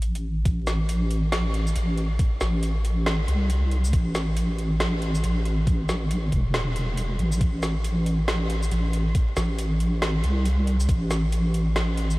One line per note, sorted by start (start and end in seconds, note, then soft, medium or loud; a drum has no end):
0.00 0.44 A1 medium
0.00 closed hi-hat medium
0.15 closed hi-hat medium
0.45 1.74 A1 loud
0.45 kick loud
0.45 closed hi-hat medium
0.67 snare medium
0.67 closed hi-hat medium
0.67 shaker medium
0.89 closed hi-hat medium
1.11 closed hi-hat medium
1.32 snare loud
1.32 closed hi-hat medium
1.54 closed hi-hat medium
1.67 shaker medium
1.76 2.18 A1 loud
1.76 closed hi-hat medium
1.98 closed hi-hat medium
2.19 kick loud
2.19 closed hi-hat medium
2.41 3.27 A1 medium
2.41 snare medium
2.41 closed hi-hat medium
2.41 shaker medium
2.63 closed hi-hat medium
2.85 closed hi-hat medium
3.06 snare loud
3.06 closed hi-hat medium
3.28 3.92 C2 medium
3.28 closed hi-hat medium
3.50 closed hi-hat medium
3.71 closed hi-hat medium
3.85 shaker medium
3.93 5.22 A1 loud
3.93 kick loud
3.93 closed hi-hat medium
4.15 snare medium
4.15 closed hi-hat medium
4.15 shaker soft
4.37 closed hi-hat medium
4.59 closed hi-hat medium
4.80 snare loud
4.80 closed hi-hat medium
5.02 closed hi-hat medium
5.15 shaker medium
5.24 5.66 A1 loud
5.24 closed hi-hat medium
5.45 closed hi-hat medium
5.67 6.31 A1 loud
5.67 kick loud
5.67 closed hi-hat medium
5.89 snare medium
5.89 closed hi-hat soft
5.89 shaker medium
6.11 closed hi-hat medium
6.32 7.18 E1 loud
6.32 kick medium
6.32 closed hi-hat medium
6.54 snare loud
6.54 closed hi-hat medium
6.76 closed hi-hat medium
6.97 closed hi-hat medium
7.19 7.40 A1 loud
7.19 closed hi-hat medium
7.32 shaker medium
7.41 8.70 A1 loud
7.41 kick loud
7.41 closed hi-hat medium
7.63 snare medium
7.63 closed hi-hat soft
7.63 shaker medium
7.84 closed hi-hat medium
8.06 closed hi-hat soft
8.28 snare loud
8.28 closed hi-hat medium
8.50 closed hi-hat medium
8.63 shaker medium
8.71 9.13 A1 loud
8.71 closed hi-hat medium
8.93 closed hi-hat medium
9.15 kick loud
9.15 closed hi-hat medium
9.37 10.22 A1 medium
9.37 snare medium
9.37 closed hi-hat medium
9.37 shaker medium
9.58 closed hi-hat medium
9.80 closed hi-hat soft
10.02 snare loud
10.02 closed hi-hat medium
10.24 10.87 C2 medium
10.24 closed hi-hat medium
10.45 closed hi-hat medium
10.67 closed hi-hat soft
10.80 shaker medium
10.89 12.18 A1 loud
10.89 kick loud
10.89 closed hi-hat medium
11.11 snare medium
11.11 closed hi-hat medium
11.11 shaker medium
11.32 closed hi-hat medium
11.54 closed hi-hat medium
11.76 snare loud
11.76 closed hi-hat medium
11.97 closed hi-hat medium
12.11 shaker medium